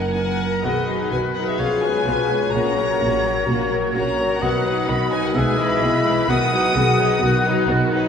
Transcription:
Already playing: F#1 F#2 D#4 A#4 F#5
0.01 F#5
0.13 A#4 F#5 G#5
0.52 A#5
0.62 B1 B2 D#3 B3 F#4 G#4 B4 D#5
0.88 F#3 D#4 B4
1.11 B1 B2 D#3 B3 F#4 B4 G#5
1.35 F#3 D#4 A#4 B4 F#5
1.47 G#4 E5
1.58 B1 B2 F3 B3 C#4 F4 G#4 C#5 F5
1.82 G#3 B3 C#4 G#4 B4 G#5
2.07 B1 B2 F3 B3 C#4 F4 G#4
2.30 G#3 B3 C#4 G#4
2.53 A#1 A#2 A#3 C#4 F#4 C#5 A#5
2.78 F#3 A#3 C#4 A#4
3.01 A#1 A#2 A#3 C#4 F#4
3.24 F#3 A#3 C#4 A#4
3.47 A#1 A#2 A#3 C#4 F#4 A#4
3.71 F#3 A#3 C#4 A#4
3.94 A#1 A#2 A#3 C#4 F#4 C#5 A#5
4.18 F#3 A#3 C#4 A#4
4.40 B1 B2 D#3 B3 F#4 B4 D#5 F#5
4.65 F#3 D#4 B4
4.88 B1 B2 D#3 B3 D#4 F#4 D#5 B5
5.12 F#3 D#4 B4 G#5
5.25 A#4 F#5
5.35 B1 B2 G#3 B3 G#4 B4 E5 G#5
5.58 E3 G#3 E4 B4 D#5 B5
5.81 B1 B2 G#3 B3 E4 G#4
6.05 E3 G#3 E4 B4
6.28 B1 B2 D#3 B3 F#4 F#5 D#6
6.51 F#3 D#4 B4
6.75 B1 B2 D#3 B3 F#4 G#4
6.98 F#3 D#4 B4
7.22 B1 B2 D#3 B3 F#4
7.45 F#3 D#4 B4
7.68 B1 B2 D#3 B3 D#4 F#4
7.91 F#3 D#4 B4

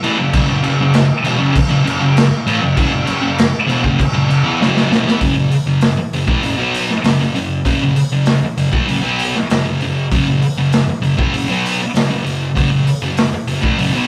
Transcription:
0.03 A2 E3, crash
0.18 F#2 C#3
0.33 F#2 C#3, kick, crash
0.49 F#2 C#3
0.63 F#2 C#3, crash
0.80 F#2 C#3
0.94 snare, crash
1.24 E2 B2, crash
1.38 F#2 C#3
1.53 muted distorted electric guitar stroke, kick, crash
1.69 F#2 C#3
1.85 F#2 C#3, crash
2.00 F#2 C#3
2.17 snare, crash
2.47 A2 E3, crash
2.62 F#2 C#3
2.76 F#2 C#3, kick, crash
2.93 F#2 C#3
3.06 F#2 C#3, crash
3.21 F#2 C#3
3.38 snare, crash
3.67 E2 B2, crash
3.84 F#2 C#3, kick
4.00 muted distorted electric guitar stroke, kick, crash
4.14 F#2 C#3
4.29 F#2 C#3, crash
4.44 E3 B3
4.60 F#2 C#3 F#3, snare
4.77 snare
4.90 E2 B2, snare
5.05 E3 B3, snare
5.20 F#2 C#3, kick, open hi-hat
5.36 F#2 C#3
5.52 muted distorted electric guitar stroke, open hi-hat
5.67 F#2 C#3
5.81 snare, open hi-hat
5.97 muted distorted electric guitar stroke
6.13 F#2 C#3, open hi-hat
6.27 A2 E3, kick
6.42 F#2 C#3, open hi-hat
6.57 B2 F#3 B3
6.74 open hi-hat
6.89 muted distorted electric guitar stroke, snare
7.04 F#2 C#3, snare, open hi-hat
7.20 F#2 C#3, snare
7.36 F#2 C#3, open hi-hat
7.65 F#2 C#3, kick, open hi-hat
7.82 F#2 C#3
7.95 muted distorted electric guitar stroke, open hi-hat
8.12 F#2 C#3
8.26 snare, open hi-hat
8.43 muted distorted electric guitar stroke
8.57 F#2 C#3, open hi-hat
8.72 A2 E3, kick
8.86 F#2 C#3, open hi-hat
9.02 B2 F#3 B3
9.19 open hi-hat
9.34 muted distorted electric guitar stroke, snare
9.50 F#2 C#3, snare, open hi-hat
9.65 F#2 C#3
9.81 F#2 C#3, open hi-hat
10.12 F#2 C#3, kick, open hi-hat
10.28 F#2 C#3
10.42 muted distorted electric guitar stroke, open hi-hat
10.57 F#2 C#3
10.72 snare, open hi-hat
10.88 muted distorted electric guitar stroke
11.02 F#2 C#3, open hi-hat
11.17 A2 E3, kick
11.33 F#2 C#3, open hi-hat
11.49 B2 F#3 B3
11.66 open hi-hat
11.80 muted distorted electric guitar stroke
11.94 F#2 C#3, snare, open hi-hat
12.11 F#2 C#3
12.24 F#2 C#3, open hi-hat
12.55 F#2 C#3, kick, open hi-hat
12.71 F#2 C#3
12.87 muted distorted electric guitar stroke, open hi-hat
13.02 F#2 C#3
13.17 snare, open hi-hat
13.33 muted distorted electric guitar stroke
13.48 F#2 C#3, open hi-hat
13.62 A2 E3, kick
13.78 F#2 C#3, open hi-hat
13.93 B2 F#3 B3

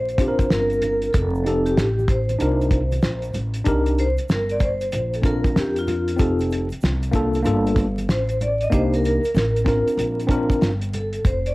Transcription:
Already playing: A#1 C5
0.08 closed hi-hat, shaker
0.18 C4 D4 F4 G4, kick, closed hi-hat, shaker
0.28 A#4
0.39 muted upright bass stroke, kick, closed hi-hat, high conga, shaker
0.50 G1 A#4, snare, shaker
0.70 closed hi-hat, shaker
0.82 A#4, closed hi-hat, high conga, low conga, shaker
1.02 closed hi-hat, shaker
1.13 F1 A4, kick, closed hi-hat, shaker
1.35 shaker
1.44 C4 D#4 G4 A4, closed hi-hat, shaker
1.66 G4, closed hi-hat, shaker
1.77 A1, snare, shaker
1.99 high conga, shaker
2.08 C5, kick, closed hi-hat, low conga, shaker
2.29 closed hi-hat, high conga, shaker
2.39 C2 D4 D#4 F4 A#4, closed hi-hat, shaker
2.61 closed hi-hat, shaker
2.71 kick, closed hi-hat, shaker
2.92 closed hi-hat, high conga, shaker
3.02 A#1, snare, shaker
3.22 closed hi-hat, shaker
3.34 A1, closed hi-hat, high conga, low conga, shaker
3.54 closed hi-hat, shaker
3.64 C2 D4 D#4 G4 A#4, kick, closed hi-hat, shaker
3.86 closed hi-hat, shaker
3.97 C5, closed hi-hat, shaker
4.17 muted upright bass stroke, closed hi-hat, shaker
4.29 G1 A#4, snare, shaker
4.49 D5, closed hi-hat, shaker
4.60 C5, kick, closed hi-hat, low conga, shaker
4.81 closed hi-hat, shaker
4.92 A#1, closed hi-hat, shaker
5.13 A4, closed hi-hat, shaker
5.22 C4 D4 F4 A#4, kick, closed hi-hat, shaker
5.27 A#4
5.44 kick, closed hi-hat, high conga, shaker
5.56 F2 G4, snare, shaker
5.76 F4, closed hi-hat, shaker
5.87 closed hi-hat, low conga, shaker
6.08 closed hi-hat, shaker
6.17 F1 C4 D#4 G4 A4, kick, closed hi-hat, shaker
6.39 closed hi-hat, shaker
6.50 closed hi-hat, shaker
6.70 muted upright bass stroke, closed hi-hat, shaker
6.81 C2, snare, shaker
7.02 closed hi-hat, shaker
7.11 A#3 D4 F4, kick, closed hi-hat, low conga, shaker
7.15 A4
7.33 closed hi-hat, shaker
7.42 G1 A#3 D4 F4, closed hi-hat, shaker
7.46 A4
7.66 closed hi-hat, shaker
7.76 kick, closed hi-hat, shaker
7.98 closed hi-hat, high conga, shaker
8.09 A1 C5, snare, shaker
8.29 closed hi-hat, shaker
8.41 D5, closed hi-hat, low conga, shaker
8.61 D#5, closed hi-hat, shaker
8.70 C2 A#3 D4 D#4 G4, kick, closed hi-hat, shaker
8.74 C5
8.93 A#4, closed hi-hat, shaker
9.04 A#4, closed hi-hat, shaker
9.24 closed hi-hat, shaker
9.34 A1, snare, shaker
9.56 closed hi-hat, shaker
9.65 C4 D4 F4 A#4, kick, snare, closed hi-hat, low conga, shaker
9.88 closed hi-hat, shaker
9.97 A#1, closed hi-hat, shaker
10.20 closed hi-hat, shaker
10.27 C4 D4 F4 A#4, kick, closed hi-hat, shaker
10.50 kick, closed hi-hat, high conga, shaker
10.61 G1, snare, shaker
10.81 closed hi-hat, shaker
10.93 A4, closed hi-hat, low conga, shaker
11.13 closed hi-hat, shaker
11.25 F1 C5, kick, closed hi-hat, shaker
11.46 D5, closed hi-hat, shaker

